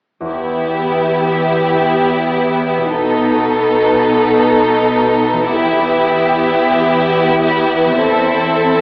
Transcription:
0.21 harp E2 B3 E4
0.26 violin section E4, harp G4
0.30 cello section E2, viola section B3, violin section G4
2.77 harp B2
2.82 harp B3
2.86 harp D#4
2.91 harp A4
2.96 cello section B2, violin section D#4 A4
5.32 harp E3
5.37 harp B3
5.42 harp E4
5.46 harp G4
5.50 cello section E2, viola section B3, violin section E4 G4
7.86 harp E3
7.90 harp C4
7.95 harp E4 A4
8.03 viola section C4, violin section A4

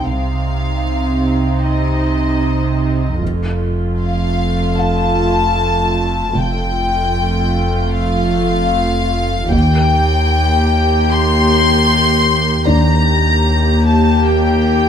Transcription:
Already playing: felt piano G5
0.06 double bass section C2, sub bass C2, cello section C3, viola section C4 D#4, violin section F5
1.63 violin section D#5
3.21 double bass section F1, sub bass F1, cello section F2, viola section A3 F4, taiko
4.01 violin section F5
4.79 felt piano F5, violin section A5
6.36 sub bass F1, double bass section F1, cello section F2, viola section A3 F4, violin section G5
7.95 violin section F5
9.52 sub bass D#2, double bass section D#2, cello section D#2, viola section A#3 G4, violin section G5, taiko
11.12 violin section C6
12.65 cello section D#2, double bass section D#2, viola section A#3 G4, felt piano D4 D5, violin section A#5
12.70 sub bass D#2
13.87 violin section A5
14.26 violin section G5

